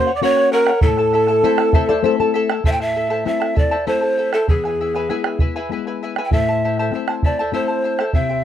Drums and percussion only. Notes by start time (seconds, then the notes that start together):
0.37 bombo rim
0.52 bombo rim
0.67 bombo rim
0.81 bombo low
0.97 bombo rim
1.13 bombo rim
1.27 bombo rim
1.58 bombo rim
1.73 bombo low
2.50 bombo rim
2.64 bombo low
2.80 bombo rim
3.11 bombo rim
3.27 bombo rim
3.42 bombo rim
3.57 bombo low
4.33 bombo rim
4.48 bombo low
4.64 bombo rim
4.95 bombo rim
5.09 bombo rim
5.24 bombo rim
5.39 bombo low
6.16 bombo rim
6.31 bombo low
6.46 bombo rim
6.77 bombo rim
6.92 bombo rim
7.08 bombo rim
7.23 bombo low
7.99 bombo rim
8.13 bombo low